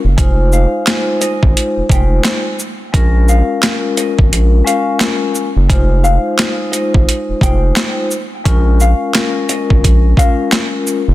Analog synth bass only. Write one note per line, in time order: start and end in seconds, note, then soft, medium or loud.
0.04 0.16 F#1 medium
0.18 0.66 F1 loud
1.43 1.54 G#1 loud
1.77 1.82 F1 medium
1.90 2.20 F1 loud
2.94 3.42 A#1 loud
4.19 4.30 G#1 medium
4.32 4.62 A#1 loud
5.56 5.68 F#1 medium
5.70 6.18 F1 loud
6.95 7.06 G#1 loud
7.29 7.34 F1 soft
7.41 7.72 F1 medium
8.46 8.94 A#1 loud
9.71 9.82 G#1 medium
9.84 10.14 A#1 medium
11.08 11.14 F#1 medium